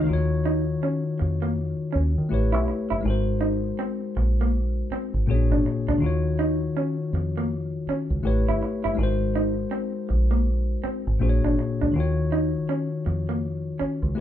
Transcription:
Already playing: D#3 D#4 F4 C#5
0.05 D#3 D#4
0.09 D#2 F4 F#4
0.13 C#5
0.46 D#4
0.83 C#4
1.19 F2, muted clean electric guitar stroke
1.42 A#3
1.93 D#2 C#4
2.18 D#3
2.29 A1 A3 E4 G4 B4
2.34 C#5
2.52 B1 E4
2.68 muted clean electric guitar stroke
2.90 F#1 E4
3.01 G#3 D#4
3.05 G#1 F#4 A#4
3.10 C5
3.41 D#4
3.79 C4
4.17 A#1, muted clean electric guitar stroke
4.41 A#3
4.91 C4, muted fingered electric bass stroke
5.14 G#1
5.26 A#1 A#2 A#3 C#4 F#4 G#4
5.31 D4 C#5
5.51 G#1 D4
5.66 muted clean electric guitar stroke
5.88 C#2 D4
5.98 D#3 D#4 F4
6.03 D#2 F#4 C#5
6.39 D#4
6.77 C#4
7.13 F2, muted clean electric guitar stroke
7.37 A#3
7.87 C#4, muted fingered electric bass stroke
8.10 C#2
8.23 A1 A3 E4 G4 B4 C#5
8.48 G1 E4
8.63 muted clean electric guitar stroke
8.84 F#1 E4
8.95 G#1 G#3 D#4 F#4
9.01 A#4 C5
9.35 D#4
9.71 C4
10.09 A#1, muted clean electric guitar stroke
10.31 A#3
10.84 C4, muted fingered electric bass stroke
11.07 G#1
11.19 A#1 A#2 A#3 D4 F#4 G#4
11.23 C5
11.29 C#5
11.44 G#1 D4
11.59 muted clean electric guitar stroke
11.81 C#2 D4
11.92 D#2 D#3 D#4 F4
11.98 F#4 C#5
12.32 D#4
12.69 C#4
13.06 F2, muted clean electric guitar stroke
13.29 A#3
13.79 C#4, muted fingered electric bass stroke
14.03 C#2
14.15 A1 A3 E4 G4

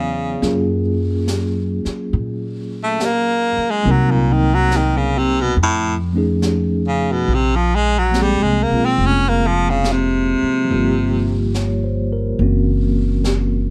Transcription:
Already playing: E2 C#3 F#3 B3 E4 G#4 D5
0.42 F#2 F#3 A#3 C#4 F4 G#4, brush sweep, snare
1.27 snare, hi-hat pedal
1.85 muted upright bass stroke, snare
2.13 A#2, brush sweep
2.84 A3
3.00 snare, hi-hat pedal
3.05 A#3
3.57 muted upright bass stroke
3.71 G#3
3.83 C2 F#3 A#3 C4 D#4, brush sweep
3.89 F#3 A#4
4.11 A#2
4.32 D#3
4.55 F#3
4.71 snare, hi-hat pedal
4.77 D#3
4.97 C#3
5.18 C3
5.41 B2
5.56 F2, brush sweep
5.63 A2
6.13 F3 A3 C#4 D#4
6.18 G#4
6.42 snare, hi-hat pedal
6.88 C#3
7.12 B2
7.28 A#1, brush sweep
7.34 C3
7.56 F3
7.76 G#3
7.99 F#3
8.09 F3 A#3
8.14 G#3 C4, snare, hi-hat pedal
8.20 G3 G#4
8.42 C2 G#3
8.63 A#3
8.70 B1 A#3 C4 F4
8.86 C4
8.98 F1, brush sweep
9.06 C#4
9.29 A#3
9.47 F3
9.70 C#3
9.84 snare, hi-hat pedal
9.92 C3
10.43 muted upright bass stroke
10.64 F3 G3
10.70 G1 A#3 F4, brush sweep
10.75 G4
11.54 C#5, snare, hi-hat pedal
11.84 C5
12.13 A#4
12.39 F#1 E3 A#3 C4 C#4 F#4, brush sweep
13.24 snare, hi-hat pedal

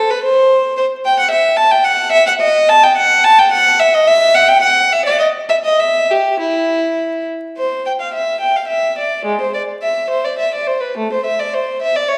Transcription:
0.10 B4
0.23 C5
0.77 C5
1.05 G5
1.20 F#5
1.31 E5
1.57 A5
1.72 G5
1.84 F#5
2.12 E5
2.27 F#5
2.41 D#5
2.69 A5
2.83 G5
2.97 F#5
3.25 A5
3.39 G5
3.52 F#5
3.80 E5
3.94 D#5
4.07 E5
4.35 F#5
4.48 G5
4.62 F#5
4.92 E5
5.05 D5
5.19 D#5
5.49 E5
5.65 D#5
5.80 E5
6.11 G4
6.40 E4
7.58 C5
7.86 G5
8.00 F5
8.14 E5
8.40 G5
8.56 F5
8.68 E5
8.98 D5
9.25 G#3
9.41 C5
9.54 D5
9.83 E5
10.10 C5
10.25 D5
10.39 E5
10.54 D5
10.67 C5
10.81 B4
10.98 A3
11.12 C5
11.25 E5
11.40 D5
11.54 C5
11.82 E5
11.96 D5
12.08 C#5

